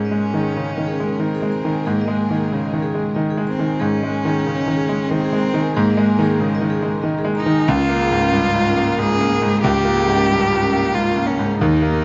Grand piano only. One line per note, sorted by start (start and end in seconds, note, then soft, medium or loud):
0.00 1.82 G#2 medium
0.11 0.46 G#3 soft
0.34 0.68 D#3 medium
0.56 0.77 C#3 soft
0.78 1.12 D#3 soft
1.00 1.34 G#3 soft
1.20 1.54 D#3 soft
1.42 1.77 G#3 soft
1.65 1.99 D#3 medium
1.87 3.78 G#2 medium
2.08 2.43 G#3 medium
2.31 2.65 D#3 medium
2.52 2.73 C#3 soft
2.74 3.08 D#3 soft
2.94 3.29 G#3 soft
3.16 3.51 D#3 medium
3.37 3.72 G#3 medium
3.59 3.94 D#3 medium
3.81 5.71 G#2 medium
4.03 4.37 G#3 medium
4.25 4.59 D#3 medium
4.46 4.67 C#3 soft
4.68 5.02 D#3 soft
4.89 5.23 G#3 soft
5.11 5.45 D#3 medium
5.33 5.66 G#3 medium
5.54 5.88 D#3 medium
5.76 7.65 G#2 medium
5.97 6.31 G#3 medium
6.19 6.52 D#3 medium
6.40 6.61 C#3 soft
6.61 6.95 D#3 medium
6.82 7.17 G#3 medium
7.04 7.38 D#3 medium
7.25 7.59 G#3 medium
7.46 7.68 D#3 medium
7.68 9.59 C#2 medium
7.89 8.24 A#3 medium
8.11 8.45 G#2 medium
8.33 8.54 G2 medium
8.54 8.89 G#2 medium
8.77 9.11 A#3 medium
8.98 9.33 G#2 medium
9.21 9.55 A#3 medium
9.42 9.76 G#2 medium
9.64 11.56 C#2 medium
9.85 10.20 A#3 medium
10.08 10.42 G#2 medium
10.30 10.51 G2 soft
10.52 10.86 G#2 medium
10.73 11.07 A#3 medium
10.94 11.29 G#2 medium
11.16 11.51 A#3 medium
11.39 11.60 G#2 medium
11.61 12.05 D#2 medium
11.82 12.05 A#3 medium